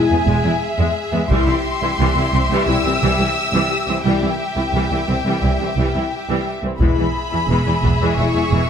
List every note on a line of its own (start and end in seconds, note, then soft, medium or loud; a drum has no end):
0.00 0.16 G#3 soft
0.00 0.16 E4 soft
0.00 1.26 G#4 soft
0.00 1.26 E5 soft
0.00 0.59 G#5 medium
0.10 0.17 E2 soft
0.10 0.19 G#3 soft
0.10 0.19 B3 soft
0.27 0.34 E1 medium
0.27 0.34 E2 medium
0.27 0.44 G#3 medium
0.44 0.51 E2 soft
0.44 0.52 G#3 soft
0.44 0.52 E4 soft
0.61 1.30 E5 medium
0.79 0.86 E2 medium
0.79 0.95 G#3 medium
1.13 1.20 E2 soft
1.13 1.21 G#3 soft
1.13 1.20 B3 soft
1.30 1.37 C2 medium
1.30 1.46 E3 medium
1.30 1.46 G3 medium
1.30 1.55 G3 soft
1.30 1.55 E4 medium
1.30 4.02 G4 soft
1.30 4.02 E5 soft
1.30 2.65 C6 medium
1.30 taiko medium
1.47 1.54 C2 soft
1.47 1.55 E3 soft
1.47 1.55 E4 soft
1.82 1.89 C2 soft
1.82 1.89 E3 medium
1.82 1.89 E4 soft
1.99 2.06 C2 medium
1.99 2.15 E3 soft
1.99 2.15 G3 medium
2.16 2.23 C2 soft
2.16 2.24 E3 soft
2.16 2.24 E4 soft
2.33 2.40 C2 medium
2.33 2.40 C2 soft
2.33 2.41 E3 soft
2.33 2.41 C4 soft
2.50 2.57 C2 medium
2.50 2.67 E3 medium
2.50 2.67 G3 medium
2.67 2.74 C2 soft
2.67 2.75 E3 soft
2.67 2.92 G3 soft
2.67 2.92 E4 medium
2.67 2.75 E4 soft
2.67 4.03 E6 medium
2.84 2.91 C2 soft
2.84 2.92 E3 soft
2.84 2.93 C4 soft
3.01 3.08 C2 medium
3.01 3.09 C2 medium
3.01 3.18 E3 medium
3.01 3.18 G3 soft
3.19 3.26 C2 soft
3.19 3.27 E3 soft
3.19 3.27 E4 soft
3.53 3.60 C2 soft
3.53 3.70 E3 medium
3.53 3.70 G3 soft
3.88 3.95 C2 soft
3.88 3.96 E3 soft
3.88 3.96 C4 soft
4.04 4.12 C2 soft
4.04 4.22 E3 soft
4.04 4.22 G3 soft
4.04 4.30 G3 soft
4.04 4.30 E4 soft
4.04 6.56 G4 soft
4.04 6.57 E5 soft
4.04 6.42 G5 medium
4.22 4.29 C2 soft
4.22 4.30 E3 soft
4.22 4.30 E4 soft
4.56 4.64 C2 soft
4.56 4.63 E3 soft
4.56 4.64 E4 soft
4.73 4.80 C2 soft
4.73 4.81 C2 soft
4.73 4.91 E3 soft
4.73 4.91 G3 soft
4.91 4.98 C2 soft
4.91 4.99 E3 soft
4.91 4.99 E4 soft
5.08 5.15 C2 soft
5.08 5.15 E3 soft
5.08 5.15 C4 soft
5.25 5.32 C2 soft
5.25 5.42 E3 soft
5.25 5.42 G3 soft
5.42 5.49 C2 soft
5.42 5.50 C2 soft
5.42 5.51 E3 soft
5.42 5.67 G3 soft
5.42 5.67 E4 soft
5.42 5.50 E4 soft
5.60 5.67 C2 soft
5.60 5.68 E3 soft
5.60 5.68 C4 soft
5.76 5.83 C2 soft
5.76 5.84 C2 soft
5.76 5.94 E3 soft
5.76 5.94 G3 soft
5.95 6.02 C2 soft
5.95 6.02 E3 soft
5.95 6.02 E4 soft
6.29 6.36 C2 soft
6.29 6.45 E3 soft
6.29 6.46 G3 soft
6.63 6.70 C2 soft
6.63 6.71 E3 soft
6.63 6.71 C4 soft
6.80 6.87 E1 soft
6.80 6.87 E2 soft
6.80 6.97 E3 soft
6.80 6.97 G#3 soft
6.80 7.05 G#3 soft
6.80 7.05 E4 soft
6.80 8.70 G#4 soft
6.80 8.70 E5 soft
6.80 8.14 B5 medium
6.80 taiko medium
6.98 7.05 E2 soft
6.98 7.05 E3 soft
6.98 7.05 E4 soft
7.32 7.39 E2 soft
7.32 7.39 E3 soft
7.32 7.39 E4 soft
7.48 7.55 E1 soft
7.48 7.57 E2 soft
7.48 7.66 E3 soft
7.48 7.66 G#3 soft
7.66 7.73 E2 soft
7.66 7.74 E3 soft
7.66 7.74 E4 soft
7.82 7.90 E1 soft
7.82 7.91 E2 soft
7.82 7.91 E3 soft
7.82 7.91 B3 soft
7.82 taiko soft
8.01 8.08 E2 soft
8.01 8.18 E3 soft
8.01 8.18 G#3 medium
8.17 8.25 E1 soft
8.17 8.25 E2 soft
8.17 8.26 E3 soft
8.17 8.43 G#3 soft
8.17 8.43 E4 soft
8.17 8.26 E4 soft
8.17 8.70 C#6 medium
8.35 8.42 E2 soft
8.35 8.43 E3 soft
8.35 8.43 B3 soft
8.52 8.59 E1 soft
8.52 8.59 E2 soft
8.52 8.69 E3 soft
8.52 8.69 G#3 soft